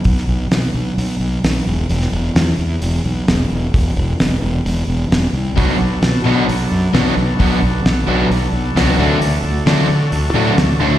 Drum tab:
HH |o---o---o---o---|o---o---o---o---|o---o---o---o---|o---o---o---o---|
SD |-o--o-------o---|-o--o-------o---|----o-------o---|----o-------o---|
BD |o---------------|----------------|o---------------|o---------------|

HH |o---o---o---o---|o---o---o---o---|
SD |----o-------o---|----o-------o---|
BD |o---------------|----------------|